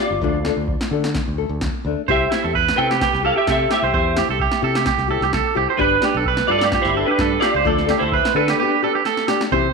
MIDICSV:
0, 0, Header, 1, 7, 480
1, 0, Start_track
1, 0, Key_signature, 0, "major"
1, 0, Tempo, 464756
1, 233, Time_signature, 4, 2, 24, 8
1, 10052, End_track
2, 0, Start_track
2, 0, Title_t, "Clean electric guitar"
2, 0, Program_c, 0, 27
2, 0, Note_on_c, 0, 65, 54
2, 0, Note_on_c, 0, 74, 58
2, 905, Note_off_c, 0, 65, 0
2, 907, Note_off_c, 0, 74, 0
2, 2170, Note_on_c, 0, 67, 63
2, 2176, Note_on_c, 0, 76, 80
2, 2610, Note_off_c, 0, 67, 0
2, 2613, Note_off_c, 0, 76, 0
2, 2845, Note_on_c, 0, 71, 71
2, 2863, Note_on_c, 0, 79, 94
2, 3306, Note_off_c, 0, 71, 0
2, 3354, Note_on_c, 0, 69, 60
2, 3361, Note_off_c, 0, 79, 0
2, 3365, Note_on_c, 0, 77, 81
2, 3467, Note_on_c, 0, 67, 58
2, 3474, Note_off_c, 0, 69, 0
2, 3479, Note_off_c, 0, 77, 0
2, 3484, Note_on_c, 0, 76, 76
2, 3579, Note_off_c, 0, 67, 0
2, 3588, Note_off_c, 0, 76, 0
2, 3605, Note_on_c, 0, 67, 59
2, 3626, Note_on_c, 0, 76, 77
2, 3815, Note_off_c, 0, 67, 0
2, 3828, Note_on_c, 0, 67, 55
2, 3841, Note_off_c, 0, 76, 0
2, 3854, Note_on_c, 0, 76, 72
2, 4750, Note_off_c, 0, 67, 0
2, 4763, Note_off_c, 0, 76, 0
2, 5963, Note_on_c, 0, 71, 84
2, 5970, Note_on_c, 0, 62, 68
2, 6424, Note_off_c, 0, 71, 0
2, 6428, Note_off_c, 0, 62, 0
2, 6685, Note_on_c, 0, 74, 98
2, 6702, Note_on_c, 0, 65, 70
2, 6781, Note_off_c, 0, 74, 0
2, 6792, Note_off_c, 0, 65, 0
2, 6793, Note_on_c, 0, 74, 85
2, 6805, Note_on_c, 0, 65, 64
2, 7036, Note_on_c, 0, 72, 81
2, 7037, Note_off_c, 0, 74, 0
2, 7042, Note_on_c, 0, 64, 63
2, 7045, Note_off_c, 0, 65, 0
2, 7284, Note_off_c, 0, 64, 0
2, 7284, Note_off_c, 0, 72, 0
2, 7288, Note_on_c, 0, 71, 78
2, 7301, Note_on_c, 0, 62, 61
2, 7638, Note_off_c, 0, 62, 0
2, 7643, Note_on_c, 0, 74, 91
2, 7655, Note_on_c, 0, 65, 68
2, 7668, Note_off_c, 0, 71, 0
2, 8225, Note_off_c, 0, 74, 0
2, 8231, Note_off_c, 0, 65, 0
2, 8245, Note_on_c, 0, 64, 62
2, 8256, Note_on_c, 0, 72, 82
2, 8589, Note_off_c, 0, 64, 0
2, 8620, Note_on_c, 0, 62, 59
2, 8630, Note_off_c, 0, 72, 0
2, 8634, Note_on_c, 0, 71, 78
2, 9305, Note_off_c, 0, 62, 0
2, 9312, Note_off_c, 0, 71, 0
2, 10052, End_track
3, 0, Start_track
3, 0, Title_t, "Clean electric guitar"
3, 0, Program_c, 1, 27
3, 2149, Note_on_c, 1, 72, 76
3, 2380, Note_off_c, 1, 72, 0
3, 2392, Note_on_c, 1, 64, 60
3, 2515, Note_off_c, 1, 64, 0
3, 2526, Note_on_c, 1, 69, 57
3, 2631, Note_off_c, 1, 69, 0
3, 2635, Note_on_c, 1, 71, 74
3, 2864, Note_off_c, 1, 71, 0
3, 2877, Note_on_c, 1, 69, 70
3, 2997, Note_off_c, 1, 69, 0
3, 3005, Note_on_c, 1, 67, 59
3, 3111, Note_off_c, 1, 67, 0
3, 3123, Note_on_c, 1, 67, 77
3, 3348, Note_off_c, 1, 67, 0
3, 3354, Note_on_c, 1, 69, 69
3, 3476, Note_off_c, 1, 69, 0
3, 3485, Note_on_c, 1, 67, 59
3, 3589, Note_off_c, 1, 67, 0
3, 3594, Note_on_c, 1, 69, 71
3, 3823, Note_off_c, 1, 69, 0
3, 3833, Note_on_c, 1, 67, 60
3, 3956, Note_off_c, 1, 67, 0
3, 3962, Note_on_c, 1, 72, 65
3, 4059, Note_off_c, 1, 72, 0
3, 4071, Note_on_c, 1, 72, 78
3, 4302, Note_off_c, 1, 72, 0
3, 4320, Note_on_c, 1, 67, 64
3, 4439, Note_off_c, 1, 67, 0
3, 4445, Note_on_c, 1, 69, 60
3, 4551, Note_off_c, 1, 69, 0
3, 4559, Note_on_c, 1, 67, 72
3, 4785, Note_off_c, 1, 67, 0
3, 4792, Note_on_c, 1, 69, 64
3, 4914, Note_off_c, 1, 69, 0
3, 4918, Note_on_c, 1, 67, 61
3, 5018, Note_off_c, 1, 67, 0
3, 5030, Note_on_c, 1, 67, 77
3, 5261, Note_off_c, 1, 67, 0
3, 5274, Note_on_c, 1, 69, 68
3, 5396, Note_off_c, 1, 69, 0
3, 5406, Note_on_c, 1, 67, 65
3, 5512, Note_off_c, 1, 67, 0
3, 5517, Note_on_c, 1, 69, 74
3, 5745, Note_off_c, 1, 69, 0
3, 5754, Note_on_c, 1, 67, 70
3, 5876, Note_off_c, 1, 67, 0
3, 5886, Note_on_c, 1, 72, 60
3, 5992, Note_off_c, 1, 72, 0
3, 6004, Note_on_c, 1, 71, 85
3, 6228, Note_off_c, 1, 71, 0
3, 6242, Note_on_c, 1, 67, 69
3, 6360, Note_off_c, 1, 67, 0
3, 6372, Note_on_c, 1, 69, 64
3, 6475, Note_off_c, 1, 69, 0
3, 6485, Note_on_c, 1, 71, 75
3, 6708, Note_off_c, 1, 71, 0
3, 6726, Note_on_c, 1, 69, 69
3, 6842, Note_off_c, 1, 69, 0
3, 6858, Note_on_c, 1, 67, 65
3, 6953, Note_off_c, 1, 67, 0
3, 6966, Note_on_c, 1, 67, 75
3, 7188, Note_off_c, 1, 67, 0
3, 7198, Note_on_c, 1, 69, 71
3, 7317, Note_off_c, 1, 69, 0
3, 7342, Note_on_c, 1, 67, 65
3, 7439, Note_off_c, 1, 67, 0
3, 7445, Note_on_c, 1, 69, 77
3, 7668, Note_off_c, 1, 69, 0
3, 7675, Note_on_c, 1, 67, 71
3, 7796, Note_off_c, 1, 67, 0
3, 7810, Note_on_c, 1, 72, 61
3, 7913, Note_off_c, 1, 72, 0
3, 7922, Note_on_c, 1, 69, 76
3, 8146, Note_off_c, 1, 69, 0
3, 8161, Note_on_c, 1, 67, 67
3, 8279, Note_off_c, 1, 67, 0
3, 8289, Note_on_c, 1, 69, 63
3, 8392, Note_off_c, 1, 69, 0
3, 8402, Note_on_c, 1, 71, 74
3, 8626, Note_off_c, 1, 71, 0
3, 8633, Note_on_c, 1, 69, 68
3, 8754, Note_off_c, 1, 69, 0
3, 8775, Note_on_c, 1, 67, 64
3, 8867, Note_off_c, 1, 67, 0
3, 8879, Note_on_c, 1, 67, 81
3, 9104, Note_off_c, 1, 67, 0
3, 9128, Note_on_c, 1, 69, 78
3, 9240, Note_off_c, 1, 69, 0
3, 9244, Note_on_c, 1, 67, 64
3, 9349, Note_off_c, 1, 67, 0
3, 9357, Note_on_c, 1, 69, 78
3, 9583, Note_off_c, 1, 69, 0
3, 9590, Note_on_c, 1, 67, 64
3, 9712, Note_off_c, 1, 67, 0
3, 9834, Note_on_c, 1, 72, 88
3, 10052, Note_off_c, 1, 72, 0
3, 10052, End_track
4, 0, Start_track
4, 0, Title_t, "Nylon-string guitar"
4, 0, Program_c, 2, 24
4, 0, Note_on_c, 2, 67, 48
4, 4, Note_on_c, 2, 62, 39
4, 137, Note_off_c, 2, 67, 0
4, 148, Note_off_c, 2, 62, 0
4, 227, Note_on_c, 2, 53, 65
4, 240, Note_on_c, 2, 57, 67
4, 240, Note_on_c, 2, 62, 71
4, 380, Note_off_c, 2, 53, 0
4, 387, Note_off_c, 2, 57, 0
4, 387, Note_off_c, 2, 62, 0
4, 475, Note_on_c, 2, 69, 44
4, 494, Note_on_c, 2, 62, 41
4, 500, Note_on_c, 2, 57, 40
4, 625, Note_off_c, 2, 69, 0
4, 634, Note_off_c, 2, 62, 0
4, 637, Note_off_c, 2, 57, 0
4, 957, Note_on_c, 2, 69, 47
4, 967, Note_on_c, 2, 62, 42
4, 980, Note_on_c, 2, 57, 41
4, 1106, Note_off_c, 2, 69, 0
4, 1111, Note_off_c, 2, 62, 0
4, 1117, Note_off_c, 2, 57, 0
4, 1425, Note_on_c, 2, 69, 51
4, 1452, Note_on_c, 2, 57, 43
4, 1580, Note_off_c, 2, 69, 0
4, 1594, Note_off_c, 2, 57, 0
4, 1924, Note_on_c, 2, 62, 42
4, 1937, Note_on_c, 2, 57, 47
4, 2070, Note_off_c, 2, 62, 0
4, 2076, Note_off_c, 2, 57, 0
4, 2152, Note_on_c, 2, 60, 65
4, 2163, Note_on_c, 2, 64, 70
4, 2165, Note_on_c, 2, 67, 67
4, 2304, Note_off_c, 2, 60, 0
4, 2309, Note_off_c, 2, 64, 0
4, 2310, Note_off_c, 2, 67, 0
4, 2385, Note_on_c, 2, 67, 48
4, 2401, Note_on_c, 2, 64, 41
4, 2412, Note_on_c, 2, 60, 37
4, 2540, Note_off_c, 2, 67, 0
4, 2548, Note_off_c, 2, 64, 0
4, 2554, Note_off_c, 2, 60, 0
4, 2870, Note_on_c, 2, 67, 48
4, 2884, Note_on_c, 2, 64, 41
4, 2889, Note_on_c, 2, 60, 37
4, 3023, Note_off_c, 2, 67, 0
4, 3030, Note_off_c, 2, 64, 0
4, 3033, Note_off_c, 2, 60, 0
4, 3339, Note_on_c, 2, 67, 52
4, 3354, Note_on_c, 2, 64, 43
4, 3373, Note_on_c, 2, 60, 36
4, 3498, Note_off_c, 2, 67, 0
4, 3505, Note_off_c, 2, 64, 0
4, 3515, Note_off_c, 2, 60, 0
4, 3819, Note_on_c, 2, 67, 42
4, 3832, Note_on_c, 2, 64, 44
4, 3848, Note_on_c, 2, 60, 43
4, 3977, Note_off_c, 2, 67, 0
4, 3984, Note_off_c, 2, 64, 0
4, 3992, Note_off_c, 2, 60, 0
4, 4301, Note_on_c, 2, 67, 45
4, 4321, Note_on_c, 2, 64, 48
4, 4330, Note_on_c, 2, 60, 38
4, 4459, Note_off_c, 2, 67, 0
4, 4469, Note_off_c, 2, 64, 0
4, 4473, Note_off_c, 2, 60, 0
4, 4772, Note_on_c, 2, 67, 52
4, 4775, Note_on_c, 2, 64, 43
4, 4934, Note_off_c, 2, 67, 0
4, 4935, Note_off_c, 2, 64, 0
4, 5248, Note_on_c, 2, 67, 60
4, 5269, Note_on_c, 2, 64, 50
4, 5276, Note_on_c, 2, 60, 40
4, 5412, Note_off_c, 2, 67, 0
4, 5423, Note_off_c, 2, 64, 0
4, 5426, Note_off_c, 2, 60, 0
4, 5732, Note_on_c, 2, 67, 59
4, 5743, Note_on_c, 2, 64, 55
4, 5754, Note_on_c, 2, 60, 45
4, 5894, Note_off_c, 2, 67, 0
4, 5899, Note_off_c, 2, 64, 0
4, 5905, Note_off_c, 2, 60, 0
4, 5978, Note_on_c, 2, 62, 70
4, 5981, Note_on_c, 2, 67, 71
4, 6137, Note_off_c, 2, 62, 0
4, 6138, Note_off_c, 2, 67, 0
4, 6218, Note_on_c, 2, 67, 49
4, 6233, Note_on_c, 2, 62, 39
4, 6377, Note_off_c, 2, 67, 0
4, 6384, Note_off_c, 2, 62, 0
4, 6689, Note_on_c, 2, 67, 46
4, 6721, Note_on_c, 2, 62, 40
4, 6852, Note_off_c, 2, 67, 0
4, 6868, Note_off_c, 2, 62, 0
4, 7170, Note_on_c, 2, 67, 46
4, 7197, Note_on_c, 2, 62, 39
4, 7332, Note_off_c, 2, 67, 0
4, 7346, Note_off_c, 2, 62, 0
4, 7656, Note_on_c, 2, 67, 49
4, 7688, Note_on_c, 2, 62, 42
4, 7815, Note_off_c, 2, 67, 0
4, 7831, Note_off_c, 2, 62, 0
4, 7902, Note_on_c, 2, 53, 68
4, 7902, Note_on_c, 2, 57, 62
4, 7913, Note_on_c, 2, 62, 71
4, 7918, Note_on_c, 2, 69, 72
4, 8058, Note_off_c, 2, 53, 0
4, 8058, Note_off_c, 2, 57, 0
4, 8064, Note_off_c, 2, 62, 0
4, 8066, Note_off_c, 2, 69, 0
4, 8126, Note_on_c, 2, 69, 53
4, 8147, Note_on_c, 2, 62, 45
4, 8157, Note_on_c, 2, 57, 40
4, 8290, Note_off_c, 2, 69, 0
4, 8301, Note_off_c, 2, 62, 0
4, 8305, Note_off_c, 2, 57, 0
4, 8633, Note_on_c, 2, 69, 46
4, 8644, Note_on_c, 2, 62, 44
4, 8656, Note_on_c, 2, 57, 35
4, 8783, Note_off_c, 2, 69, 0
4, 8789, Note_off_c, 2, 62, 0
4, 8795, Note_off_c, 2, 57, 0
4, 8879, Note_on_c, 2, 59, 66
4, 8899, Note_on_c, 2, 62, 65
4, 8910, Note_on_c, 2, 67, 76
4, 9026, Note_off_c, 2, 59, 0
4, 9036, Note_off_c, 2, 62, 0
4, 9042, Note_off_c, 2, 67, 0
4, 9113, Note_on_c, 2, 67, 47
4, 9132, Note_on_c, 2, 62, 40
4, 9263, Note_off_c, 2, 67, 0
4, 9272, Note_off_c, 2, 62, 0
4, 9584, Note_on_c, 2, 67, 59
4, 9601, Note_on_c, 2, 62, 44
4, 9738, Note_off_c, 2, 67, 0
4, 9746, Note_off_c, 2, 62, 0
4, 9832, Note_on_c, 2, 52, 74
4, 9841, Note_on_c, 2, 60, 76
4, 9847, Note_on_c, 2, 64, 89
4, 9851, Note_on_c, 2, 67, 85
4, 9982, Note_off_c, 2, 52, 0
4, 9986, Note_off_c, 2, 60, 0
4, 9989, Note_off_c, 2, 64, 0
4, 9991, Note_off_c, 2, 67, 0
4, 10052, End_track
5, 0, Start_track
5, 0, Title_t, "Fingered electric bass"
5, 0, Program_c, 3, 33
5, 108, Note_on_c, 3, 31, 69
5, 198, Note_off_c, 3, 31, 0
5, 223, Note_on_c, 3, 38, 84
5, 504, Note_off_c, 3, 38, 0
5, 584, Note_on_c, 3, 38, 72
5, 772, Note_off_c, 3, 38, 0
5, 939, Note_on_c, 3, 50, 74
5, 1222, Note_off_c, 3, 50, 0
5, 1319, Note_on_c, 3, 38, 67
5, 1501, Note_off_c, 3, 38, 0
5, 1542, Note_on_c, 3, 38, 75
5, 1731, Note_off_c, 3, 38, 0
5, 1906, Note_on_c, 3, 38, 73
5, 2006, Note_off_c, 3, 38, 0
5, 2152, Note_on_c, 3, 36, 91
5, 2334, Note_off_c, 3, 36, 0
5, 2522, Note_on_c, 3, 40, 81
5, 2788, Note_off_c, 3, 40, 0
5, 2872, Note_on_c, 3, 48, 76
5, 3151, Note_off_c, 3, 48, 0
5, 3238, Note_on_c, 3, 36, 73
5, 3421, Note_off_c, 3, 36, 0
5, 3589, Note_on_c, 3, 48, 81
5, 3773, Note_off_c, 3, 48, 0
5, 3950, Note_on_c, 3, 36, 69
5, 4040, Note_off_c, 3, 36, 0
5, 4066, Note_on_c, 3, 40, 83
5, 4347, Note_off_c, 3, 40, 0
5, 4429, Note_on_c, 3, 36, 73
5, 4615, Note_off_c, 3, 36, 0
5, 4776, Note_on_c, 3, 48, 76
5, 5060, Note_off_c, 3, 48, 0
5, 5144, Note_on_c, 3, 36, 74
5, 5332, Note_off_c, 3, 36, 0
5, 5380, Note_on_c, 3, 36, 78
5, 5570, Note_off_c, 3, 36, 0
5, 5746, Note_on_c, 3, 36, 75
5, 5846, Note_off_c, 3, 36, 0
5, 5982, Note_on_c, 3, 31, 94
5, 6168, Note_off_c, 3, 31, 0
5, 6346, Note_on_c, 3, 35, 91
5, 6618, Note_off_c, 3, 35, 0
5, 6705, Note_on_c, 3, 43, 75
5, 6986, Note_off_c, 3, 43, 0
5, 7073, Note_on_c, 3, 31, 76
5, 7257, Note_off_c, 3, 31, 0
5, 7419, Note_on_c, 3, 43, 83
5, 7606, Note_off_c, 3, 43, 0
5, 7791, Note_on_c, 3, 37, 78
5, 7880, Note_off_c, 3, 37, 0
5, 7902, Note_on_c, 3, 38, 86
5, 8183, Note_off_c, 3, 38, 0
5, 8272, Note_on_c, 3, 38, 78
5, 8457, Note_off_c, 3, 38, 0
5, 8619, Note_on_c, 3, 50, 75
5, 8805, Note_off_c, 3, 50, 0
5, 9834, Note_on_c, 3, 48, 96
5, 10014, Note_off_c, 3, 48, 0
5, 10052, End_track
6, 0, Start_track
6, 0, Title_t, "Muted nylon-string guitar strokes"
6, 249, Note_on_c, 9, 29, 65
6, 352, Note_off_c, 9, 29, 0
6, 2152, Note_on_c, 9, 29, 66
6, 2255, Note_off_c, 9, 29, 0
6, 5963, Note_on_c, 9, 29, 68
6, 6066, Note_off_c, 9, 29, 0
6, 10052, End_track
7, 0, Start_track
7, 0, Title_t, "Drums"
7, 220, Note_on_c, 9, 36, 77
7, 323, Note_off_c, 9, 36, 0
7, 463, Note_on_c, 9, 38, 58
7, 566, Note_off_c, 9, 38, 0
7, 702, Note_on_c, 9, 36, 78
7, 805, Note_off_c, 9, 36, 0
7, 834, Note_on_c, 9, 38, 58
7, 938, Note_off_c, 9, 38, 0
7, 1074, Note_on_c, 9, 38, 58
7, 1177, Note_off_c, 9, 38, 0
7, 1183, Note_on_c, 9, 38, 57
7, 1186, Note_on_c, 9, 36, 74
7, 1286, Note_off_c, 9, 38, 0
7, 1290, Note_off_c, 9, 36, 0
7, 1665, Note_on_c, 9, 38, 58
7, 1668, Note_on_c, 9, 36, 76
7, 1769, Note_off_c, 9, 38, 0
7, 1771, Note_off_c, 9, 36, 0
7, 2152, Note_on_c, 9, 36, 84
7, 2256, Note_off_c, 9, 36, 0
7, 2394, Note_on_c, 9, 38, 61
7, 2497, Note_off_c, 9, 38, 0
7, 2632, Note_on_c, 9, 36, 74
7, 2735, Note_off_c, 9, 36, 0
7, 2773, Note_on_c, 9, 38, 57
7, 2877, Note_off_c, 9, 38, 0
7, 3004, Note_on_c, 9, 38, 56
7, 3107, Note_off_c, 9, 38, 0
7, 3112, Note_on_c, 9, 36, 78
7, 3113, Note_on_c, 9, 38, 59
7, 3215, Note_off_c, 9, 36, 0
7, 3216, Note_off_c, 9, 38, 0
7, 3249, Note_on_c, 9, 38, 21
7, 3353, Note_off_c, 9, 38, 0
7, 3587, Note_on_c, 9, 38, 60
7, 3588, Note_on_c, 9, 36, 77
7, 3690, Note_off_c, 9, 38, 0
7, 3691, Note_off_c, 9, 36, 0
7, 3828, Note_on_c, 9, 38, 60
7, 3931, Note_off_c, 9, 38, 0
7, 4067, Note_on_c, 9, 36, 85
7, 4170, Note_off_c, 9, 36, 0
7, 4302, Note_on_c, 9, 38, 65
7, 4405, Note_off_c, 9, 38, 0
7, 4542, Note_on_c, 9, 36, 76
7, 4646, Note_off_c, 9, 36, 0
7, 4664, Note_on_c, 9, 38, 58
7, 4767, Note_off_c, 9, 38, 0
7, 4909, Note_on_c, 9, 38, 61
7, 5013, Note_off_c, 9, 38, 0
7, 5017, Note_on_c, 9, 38, 59
7, 5021, Note_on_c, 9, 36, 77
7, 5121, Note_off_c, 9, 38, 0
7, 5124, Note_off_c, 9, 36, 0
7, 5151, Note_on_c, 9, 38, 22
7, 5254, Note_off_c, 9, 38, 0
7, 5394, Note_on_c, 9, 38, 23
7, 5497, Note_off_c, 9, 38, 0
7, 5505, Note_on_c, 9, 36, 82
7, 5505, Note_on_c, 9, 38, 61
7, 5608, Note_off_c, 9, 36, 0
7, 5608, Note_off_c, 9, 38, 0
7, 5980, Note_on_c, 9, 36, 81
7, 6083, Note_off_c, 9, 36, 0
7, 6216, Note_on_c, 9, 38, 62
7, 6319, Note_off_c, 9, 38, 0
7, 6460, Note_on_c, 9, 36, 79
7, 6563, Note_off_c, 9, 36, 0
7, 6579, Note_on_c, 9, 38, 60
7, 6682, Note_off_c, 9, 38, 0
7, 6830, Note_on_c, 9, 38, 58
7, 6934, Note_off_c, 9, 38, 0
7, 6939, Note_on_c, 9, 38, 58
7, 6940, Note_on_c, 9, 36, 71
7, 7042, Note_off_c, 9, 38, 0
7, 7043, Note_off_c, 9, 36, 0
7, 7072, Note_on_c, 9, 38, 23
7, 7176, Note_off_c, 9, 38, 0
7, 7422, Note_on_c, 9, 38, 60
7, 7423, Note_on_c, 9, 36, 80
7, 7526, Note_off_c, 9, 36, 0
7, 7526, Note_off_c, 9, 38, 0
7, 7667, Note_on_c, 9, 38, 55
7, 7770, Note_off_c, 9, 38, 0
7, 7905, Note_on_c, 9, 36, 80
7, 8008, Note_off_c, 9, 36, 0
7, 8040, Note_on_c, 9, 38, 22
7, 8143, Note_off_c, 9, 38, 0
7, 8145, Note_on_c, 9, 38, 65
7, 8248, Note_off_c, 9, 38, 0
7, 8387, Note_on_c, 9, 36, 79
7, 8490, Note_off_c, 9, 36, 0
7, 8522, Note_on_c, 9, 38, 59
7, 8626, Note_off_c, 9, 38, 0
7, 8759, Note_on_c, 9, 38, 57
7, 8863, Note_off_c, 9, 38, 0
7, 9350, Note_on_c, 9, 38, 37
7, 9453, Note_off_c, 9, 38, 0
7, 9474, Note_on_c, 9, 38, 42
7, 9577, Note_off_c, 9, 38, 0
7, 9586, Note_on_c, 9, 38, 61
7, 9689, Note_off_c, 9, 38, 0
7, 9718, Note_on_c, 9, 38, 62
7, 9821, Note_off_c, 9, 38, 0
7, 9831, Note_on_c, 9, 36, 88
7, 9934, Note_off_c, 9, 36, 0
7, 10052, End_track
0, 0, End_of_file